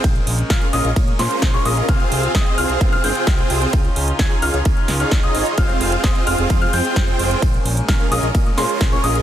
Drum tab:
RD |x---x---x---x---|x---x---x---x---|x---x---x---x---|x---x---x---x---|
HH |xxoxxxoxxxoxxxox|xxoxxxoxxxoxxxox|xxoxxxoxxxoxxxox|xxoxxxoxxxoxxxox|
SD |----o-----o-o---|----o-------o---|----o-----o-o---|----o-------o---|
BD |o---o---o---o---|o---o---o---o---|o---o---o---o---|o---o---o---o---|

RD |x---x---x---x---|
HH |xxoxxxoxxxoxxxox|
SD |----o-----o-o---|
BD |o---o---o---o---|